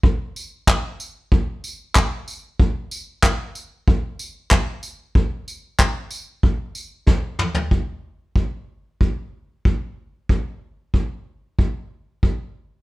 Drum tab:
TB |--x---x---x---x-|--x---x---x---x-|--x---x---x-----|----------------|
CP |----x-------x---|----x-------x---|----x-----------|----------------|
SD |----------------|----------------|------------o---|----------------|
T2 |----------------|----------------|--------------o-|----------------|
FT |----------------|----------------|---------------o|----------------|
BD |o---o---o---o---|o---o---o---o---|o---o---o---o---|o---o---o---o---|

TB |----------------|
CP |----------------|
SD |----------------|
T2 |----------------|
FT |----------------|
BD |o---o---o---o---|